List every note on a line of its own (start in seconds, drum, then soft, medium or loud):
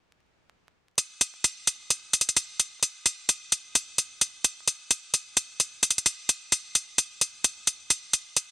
0.98 closed hi-hat medium
1.21 closed hi-hat medium
1.44 closed hi-hat medium
1.67 closed hi-hat medium
1.90 closed hi-hat medium
2.13 closed hi-hat medium
2.21 closed hi-hat medium
2.29 closed hi-hat soft
2.37 closed hi-hat medium
2.60 closed hi-hat medium
2.83 closed hi-hat medium
3.06 closed hi-hat medium
3.29 closed hi-hat medium
3.52 closed hi-hat medium
3.75 closed hi-hat medium
3.98 closed hi-hat medium
4.21 closed hi-hat medium
4.44 closed hi-hat medium
4.67 closed hi-hat medium
4.90 closed hi-hat medium
5.14 closed hi-hat medium
5.37 closed hi-hat medium
5.60 closed hi-hat medium
5.83 closed hi-hat medium
5.91 closed hi-hat medium
5.98 closed hi-hat soft
6.06 closed hi-hat medium
6.29 closed hi-hat medium
6.52 closed hi-hat medium
6.75 closed hi-hat medium
6.98 closed hi-hat medium
7.21 closed hi-hat medium
7.44 closed hi-hat medium
7.67 closed hi-hat medium
7.90 closed hi-hat medium
8.14 closed hi-hat medium
8.37 closed hi-hat medium